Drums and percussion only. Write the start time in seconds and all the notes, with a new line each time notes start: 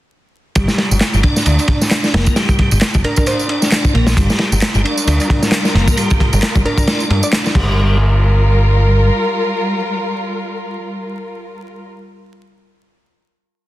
0.55 kick, ride, tambourine
0.68 snare, tambourine
0.78 snare, ride
0.91 tambourine
1.01 snare, clap, ride, tambourine
1.14 tambourine
1.23 kick, ride
1.36 snare, tambourine
1.46 ride, tambourine
1.59 ride, tambourine
1.68 kick, ride
1.82 snare, tambourine
1.91 snare, clap, ride, tambourine
2.04 snare, tambourine
2.14 snare, ride
2.26 kick, tambourine
2.36 snare, ride, tambourine
2.49 kick, tambourine
2.59 kick, ride
2.71 ride, tambourine
2.81 snare, clap, ride, tambourine
2.94 kick, tambourine
3.04 ride
3.16 kick, tambourine
3.26 ride, tambourine
3.39 tambourine
3.49 ride
3.62 snare, tambourine
3.72 snare, clap, ride, tambourine
3.85 kick, tambourine
3.95 ride
4.07 snare, ride, tambourine
4.17 kick, ride, tambourine
4.30 snare, tambourine
4.38 snare, ride
4.52 tambourine
4.62 snare, clap, ride, tambourine
4.75 tambourine
4.85 ride
4.97 tambourine
5.07 ride, tambourine
5.20 ride, tambourine
5.30 kick, ride
5.43 snare, tambourine
5.52 snare, clap, ride, tambourine
5.65 snare, tambourine
5.74 snare, ride
5.88 kick, tambourine
5.97 ride, tambourine
6.10 kick, tambourine
6.20 kick, ride
6.33 ride, tambourine
6.42 snare, clap, ride, tambourine
6.55 kick, tambourine
6.65 ride
6.78 kick, tambourine
6.87 snare, ride, tambourine
7.00 tambourine
7.10 ride
7.23 tambourine
7.33 snare, clap, ride, tambourine
7.46 snare, tambourine
7.55 kick, crash